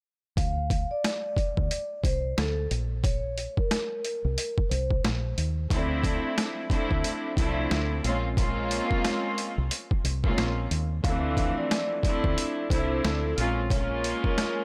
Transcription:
0.37 0.84 D2 loud
0.37 0.88 F5 loud
0.37 kick loud
0.37 closed hi-hat medium
0.70 kick loud
0.70 closed hi-hat medium
0.91 2.00 D5 medium
1.04 cross-stick loud
1.04 snare loud
1.04 closed hi-hat medium
1.37 kick medium
1.37 closed hi-hat medium
1.57 1.69 D2 medium
1.57 kick loud
1.71 closed hi-hat medium
2.03 2.33 C2 medium
2.03 2.34 C5 medium
2.03 kick medium
2.03 closed hi-hat medium
2.37 2.66 D2 loud
2.37 2.67 A4 medium
2.37 cross-stick medium
2.37 snare loud
2.37 closed hi-hat medium
2.71 3.46 A#1 medium
2.71 closed hi-hat medium
3.03 3.54 C#5 loud
3.03 kick loud
3.03 closed hi-hat medium
3.38 closed hi-hat medium
3.57 4.67 A#4 medium
3.57 kick medium
3.71 cross-stick loud
3.71 snare loud
3.71 closed hi-hat loud
4.05 closed hi-hat medium
4.25 4.36 C2 medium
4.38 closed hi-hat loud
4.58 kick loud
4.70 5.00 C2 medium
4.70 5.00 C5 medium
4.70 closed hi-hat medium
4.91 kick loud
5.04 5.33 A#1 loud
5.04 cross-stick medium
5.04 snare loud
5.04 closed hi-hat medium
5.38 5.66 D#2 medium
5.38 closed hi-hat medium
5.70 6.17 D2 loud
5.70 6.64 F3 loud
5.70 6.65 A3 medium
5.70 6.65 C4 loud
5.70 6.65 D4 medium
5.70 6.66 E4 loud
5.70 kick loud
5.70 closed hi-hat medium
6.04 kick medium
6.04 closed hi-hat medium
6.38 cross-stick loud
6.38 snare loud
6.38 closed hi-hat medium
6.69 7.32 F3 loud
6.69 7.32 A3 medium
6.69 7.33 C4 medium
6.69 7.33 D4 medium
6.69 7.33 E4 loud
6.69 kick medium
6.69 closed hi-hat medium
6.91 7.02 D2 medium
6.91 kick medium
7.04 closed hi-hat medium
7.37 7.66 C2 medium
7.37 8.04 F3 loud
7.37 8.04 A3 medium
7.37 8.03 C4 medium
7.37 8.05 D4 medium
7.37 8.05 E4 loud
7.37 kick medium
7.37 closed hi-hat medium
7.71 8.00 D2 loud
7.71 cross-stick medium
7.71 snare loud
7.71 closed hi-hat medium
8.03 8.79 A#1 loud
8.03 8.26 G#3 medium
8.03 8.27 A#3 medium
8.03 8.27 C4 medium
8.03 8.27 C#4 medium
8.03 8.28 F4 loud
8.03 closed hi-hat medium
8.37 10.06 G#3 loud
8.37 10.07 A#3 loud
8.37 10.07 C4 loud
8.37 10.07 C#4 loud
8.37 10.07 F4 loud
8.37 kick loud
8.37 closed hi-hat medium
8.71 closed hi-hat medium
8.91 kick medium
9.05 cross-stick loud
9.05 snare loud
9.05 closed hi-hat medium
9.38 closed hi-hat medium
9.58 9.69 C2 medium
9.71 closed hi-hat loud
9.91 kick loud
10.04 10.33 C2 medium
10.04 closed hi-hat medium
10.23 10.67 G#3 medium
10.23 10.67 A#3 medium
10.23 10.67 C4 medium
10.23 10.68 C#4 medium
10.23 10.68 F4 loud
10.23 kick loud
10.38 10.66 A#1 loud
10.38 cross-stick loud
10.38 snare loud
10.38 closed hi-hat medium
10.71 11.00 D#2 medium
10.71 closed hi-hat medium
11.04 11.50 D2 loud
11.04 11.99 E3 loud
11.04 11.98 F3 medium
11.04 11.98 A3 medium
11.04 11.98 C4 loud
11.04 11.99 D4 medium
11.04 11.54 F5 loud
11.04 kick loud
11.04 closed hi-hat medium
11.37 kick medium
11.37 closed hi-hat medium
11.58 12.67 D5 medium
11.71 cross-stick loud
11.71 snare loud
11.71 closed hi-hat medium
12.02 12.66 F3 loud
12.02 12.66 A3 loud
12.02 12.66 C4 medium
12.02 12.66 D4 medium
12.02 12.67 E4 loud
12.02 kick medium
12.02 closed hi-hat medium
12.24 12.36 D2 medium
12.24 kick loud
12.38 closed hi-hat medium
12.70 12.99 C2 medium
12.70 13.37 F3 loud
12.70 13.37 A3 medium
12.70 13.37 C4 medium
12.70 13.38 D4 medium
12.70 13.38 E4 loud
12.70 13.00 C5 medium
12.70 kick medium
12.70 closed hi-hat medium
13.04 13.33 D2 medium
13.04 13.34 A4 medium
13.04 cross-stick medium
13.04 snare loud
13.04 closed hi-hat medium
13.36 14.13 A#1 medium
13.36 13.60 G#3 medium
13.36 13.60 A#3 medium
13.36 13.60 C4 medium
13.36 13.61 C#4 medium
13.36 13.61 F4 loud
13.36 closed hi-hat medium
13.70 14.64 G#3 loud
13.70 14.64 A#3 loud
13.70 14.64 C#4 loud
13.70 14.64 F4 loud
13.70 14.21 C#5 loud
13.70 kick loud
13.70 closed hi-hat medium
14.04 closed hi-hat medium
14.24 14.64 A#4 medium
14.24 kick medium
14.38 cross-stick loud
14.38 snare loud
14.38 closed hi-hat medium

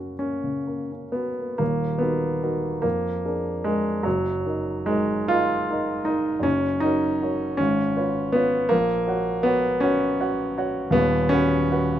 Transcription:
0.00 1.56 F#2 soft
0.00 0.44 C#3 soft
0.00 0.22 A#3 soft
0.00 0.19 C#4 soft
0.00 1.15 F#4 medium
0.19 0.58 A#3 soft
0.19 0.91 C#4 medium
0.44 0.81 C#3 soft
0.67 1.05 A#3 soft
0.92 1.30 C#4 soft
1.12 1.59 B3 medium
1.12 1.52 F#4 soft
1.39 1.57 A#3 soft
1.58 1.99 D#1 soft
1.58 2.00 D#2 medium
1.58 2.00 A#3 medium
1.99 2.83 B3 medium
1.99 2.38 D#4 soft
1.99 2.39 F#4 soft
1.99 2.39 A#4 soft
2.43 2.80 D#4 soft
2.43 2.80 F#4 soft
2.43 2.81 A#4 soft
2.82 3.24 F2 medium
2.82 3.65 A#3 medium
3.25 3.62 D4 soft
3.25 3.62 G#4 soft
3.25 3.62 A#4 soft
3.64 4.05 G#3 medium
3.64 4.02 D4 soft
3.64 4.02 G#4 soft
3.64 4.02 A#4 soft
4.03 4.44 F#1 medium
4.03 4.45 F#2 medium
4.03 4.88 F#3 medium
4.46 4.85 D#4 soft
4.46 4.85 A#4 soft
4.46 4.85 D#5 soft
4.86 5.29 G#3 medium
4.86 5.26 D#4 soft
4.86 5.26 A#4 soft
4.86 5.27 D#5 soft
5.28 5.66 D#4 soft
5.28 6.06 F4 loud
5.28 5.66 A#4 soft
5.28 5.66 D#5 soft
5.70 6.03 D#4 soft
5.70 6.04 A#4 soft
5.70 6.04 D#5 soft
6.05 6.44 D#4 medium
6.05 6.41 A#4 soft
6.05 6.42 D#5 medium
6.40 6.79 F#2 medium
6.40 6.82 C#4 medium
6.44 6.82 F#1 medium
6.80 7.58 D#4 loud
6.80 7.17 F#4 soft
6.80 7.17 A#4 soft
6.80 7.18 C#5 soft
7.22 7.56 F#4 soft
7.22 7.56 A#4 soft
7.22 7.56 C#5 soft
7.57 7.96 G#1 medium
7.57 8.33 C#4 loud
7.97 8.30 F4 soft
7.97 8.30 B4 soft
7.97 8.31 C#5 medium
8.32 8.71 B3 loud
8.32 8.68 F4 soft
8.32 8.68 B4 soft
8.32 8.69 C#5 medium
8.69 9.07 A#1 medium
8.69 9.45 A#3 loud
9.07 9.42 F#4 medium
9.07 9.42 C#5 soft
9.07 9.42 F#5 medium
9.43 9.82 B3 loud
9.43 9.79 F#4 soft
9.43 9.80 C#5 medium
9.43 9.80 F#5 medium
9.80 10.20 C#4 loud
9.80 10.17 F#4 medium
9.80 10.17 C#5 medium
9.80 10.17 F#5 medium
10.20 10.55 F#4 medium
10.20 10.55 C#5 medium
10.20 10.55 F#5 medium
10.58 10.92 F#4 medium
10.58 10.92 C#5 medium
10.58 10.92 F#5 medium
10.91 11.31 D#1 medium
10.91 11.30 D#2 medium
10.91 11.32 B3 loud
11.29 11.99 C#4 loud
11.29 11.67 F#4 medium
11.29 11.67 B4 medium
11.29 11.68 F#5 medium
11.72 11.99 F#4 medium
11.72 11.99 B4 medium
11.72 11.99 F#5 medium

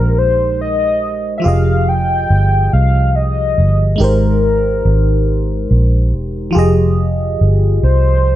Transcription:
0.00 1.40 A#1 medium
0.00 1.38 G#3 medium
0.00 1.39 D#4 medium
0.00 1.40 G4 medium
0.00 0.20 A#4 medium
0.00 1.41 A#4 medium
0.00 1.42 C5 medium
0.18 0.59 C5 loud
0.61 1.34 D#5 loud
1.38 3.93 F3 soft
1.38 1.46 E5 medium
1.42 2.26 F1 medium
1.42 3.94 F4 soft
1.42 3.95 G4 soft
1.42 1.90 F5 loud
1.46 3.96 G#4 soft
1.46 3.97 D#5 medium
1.88 2.72 G5 loud
2.30 2.68 G1 medium
2.73 3.59 C2 medium
2.73 3.17 F5 loud
3.15 4.00 D#5 loud
3.58 3.95 G1 medium
3.96 6.49 G#3 medium
3.96 6.50 D#4 medium
4.00 4.81 G#1 loud
4.00 6.51 G4 soft
4.00 6.08 A#4 medium
4.00 6.51 A#4 soft
4.04 6.53 C5 medium
4.85 5.66 G#1 medium
5.71 6.14 A#1 medium
6.14 6.51 E1 medium
6.51 8.36 F3 medium
6.51 8.36 F4 medium
6.55 7.36 F1 medium
6.55 8.36 G4 medium
6.55 8.36 G#4 medium
6.55 8.36 D#5 medium
7.41 7.79 G1 medium
7.83 8.36 C2 medium
7.83 8.36 C5 loud

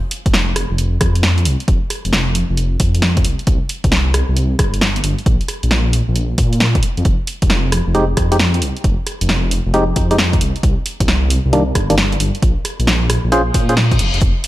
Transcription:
0.11 open hi-hat loud
0.26 0.64 F1 medium
0.26 kick loud
0.26 closed hi-hat medium
0.34 snare loud
0.56 cross-stick medium
0.56 open hi-hat medium
0.71 0.97 F1 loud
0.78 closed hi-hat medium
1.01 1.47 F2 medium
1.01 kick loud
1.01 cross-stick medium
1.01 open hi-hat loud
1.15 closed hi-hat medium
1.23 snare loud
1.38 closed hi-hat medium
1.45 1.56 C2 medium
1.45 open hi-hat medium
1.60 closed hi-hat soft
1.68 1.79 F1 loud
1.68 kick loud
1.68 closed hi-hat medium
1.90 cross-stick soft
1.90 open hi-hat loud
2.05 2.44 F1 medium
2.05 closed hi-hat medium
2.13 snare loud
2.35 open hi-hat medium
2.50 2.77 F1 loud
2.57 closed hi-hat medium
2.80 3.26 F2 medium
2.80 kick loud
2.80 open hi-hat loud
2.95 closed hi-hat medium
3.02 snare loud
3.17 kick loud
3.17 closed hi-hat soft
3.25 3.35 C2 medium
3.25 open hi-hat medium
3.39 closed hi-hat soft
3.47 3.58 C2 loud
3.47 kick loud
3.47 closed hi-hat medium
3.69 open hi-hat loud
3.84 4.23 C2 medium
3.84 kick loud
3.84 closed hi-hat medium
3.92 snare loud
4.14 cross-stick medium
4.14 open hi-hat medium
4.29 4.56 C2 loud
4.37 closed hi-hat medium
4.59 5.01 G1 medium
4.59 kick loud
4.59 cross-stick medium
4.59 open hi-hat loud
4.74 closed hi-hat medium
4.81 snare loud
4.96 closed hi-hat soft
5.04 5.15 G1 medium
5.04 open hi-hat medium
5.19 closed hi-hat soft
5.26 5.37 A#1 medium
5.26 kick loud
5.26 closed hi-hat medium
5.41 closed hi-hat soft
5.48 cross-stick soft
5.48 open hi-hat loud
5.63 6.02 A#1 medium
5.63 closed hi-hat medium
5.71 snare loud
5.93 open hi-hat medium
6.08 6.35 A#1 loud
6.16 closed hi-hat medium
6.38 6.80 A#2 medium
6.38 kick loud
6.38 open hi-hat loud
6.53 closed hi-hat medium
6.60 snare loud
6.75 kick loud
6.75 closed hi-hat soft
6.83 open hi-hat medium
6.97 7.03 F2 loud
6.97 closed hi-hat soft
7.05 7.16 F1 loud
7.05 kick loud
7.05 closed hi-hat medium
7.27 open hi-hat loud
7.42 7.81 F1 medium
7.42 kick loud
7.42 closed hi-hat medium
7.50 snare loud
7.72 cross-stick medium
7.72 open hi-hat medium
7.87 8.14 F1 loud
7.95 8.05 G#3 medium
7.95 8.05 C4 medium
7.95 8.05 D#4 medium
7.95 8.05 G4 loud
7.95 closed hi-hat medium
8.17 8.63 F2 medium
8.17 kick loud
8.17 cross-stick medium
8.17 open hi-hat loud
8.32 8.37 G#3 medium
8.32 8.37 C4 medium
8.32 8.37 D#4 medium
8.32 8.37 G4 loud
8.32 closed hi-hat medium
8.39 snare loud
8.54 closed hi-hat medium
8.62 8.73 C2 medium
8.62 open hi-hat medium
8.77 closed hi-hat soft
8.84 8.95 F1 loud
8.84 kick loud
8.84 closed hi-hat medium
9.07 cross-stick soft
9.07 open hi-hat loud
9.21 9.60 F1 medium
9.21 closed hi-hat medium
9.29 snare loud
9.51 open hi-hat medium
9.66 9.93 F1 loud
9.74 9.84 G#3 medium
9.74 9.84 C4 medium
9.74 9.84 D#4 medium
9.74 9.84 G4 loud
9.74 closed hi-hat medium
9.96 10.42 F2 medium
9.96 kick loud
9.96 open hi-hat loud
10.11 10.16 G#3 medium
10.11 10.16 C4 medium
10.11 10.16 D#4 medium
10.11 10.16 G4 loud
10.11 closed hi-hat medium
10.18 snare loud
10.33 kick loud
10.33 closed hi-hat medium
10.41 10.52 C2 medium
10.41 open hi-hat medium
10.56 closed hi-hat soft
10.63 10.74 C2 medium
10.63 kick loud
10.63 closed hi-hat medium
10.86 open hi-hat loud
11.00 11.39 C2 medium
11.00 kick loud
11.00 closed hi-hat medium
11.08 snare loud
11.30 open hi-hat medium
11.45 11.72 C2 loud
11.53 11.63 D#3 medium
11.53 11.63 G3 medium
11.53 11.63 A#3 medium
11.53 11.63 D4 loud
11.53 closed hi-hat medium
11.75 12.17 G1 medium
11.75 kick loud
11.75 cross-stick medium
11.75 open hi-hat loud
11.90 11.95 D#3 medium
11.90 11.95 G3 medium
11.90 11.95 A#3 medium
11.90 11.95 D4 loud
11.90 closed hi-hat medium
11.98 snare loud
12.12 closed hi-hat medium
12.20 12.31 G1 medium
12.20 open hi-hat medium
12.35 closed hi-hat soft
12.42 12.53 A#1 medium
12.42 kick loud
12.42 closed hi-hat medium
12.65 cross-stick soft
12.65 open hi-hat loud
12.80 13.18 A#1 medium
12.80 closed hi-hat medium
12.87 snare loud
13.10 cross-stick medium
13.10 open hi-hat medium
13.24 13.51 A#1 loud
13.32 13.42 C#4 medium
13.32 13.42 F4 medium
13.32 13.42 G#4 medium
13.32 13.42 C5 loud
13.32 closed hi-hat medium
13.32 reverse cymbal medium
13.54 13.91 A#2 medium
13.54 kick loud
13.54 open hi-hat loud
13.69 13.74 C#4 medium
13.69 13.74 F4 medium
13.69 13.74 G#4 medium
13.69 13.74 C5 loud
13.69 closed hi-hat medium
13.77 snare loud
13.91 14.01 A#2 medium
13.91 kick loud
13.91 closed hi-hat medium
13.99 14.10 F1 medium
13.99 open hi-hat medium
14.14 14.20 F1 medium
14.14 closed hi-hat soft
14.21 14.32 F1 loud
14.21 kick loud
14.21 closed hi-hat medium
14.44 open hi-hat loud

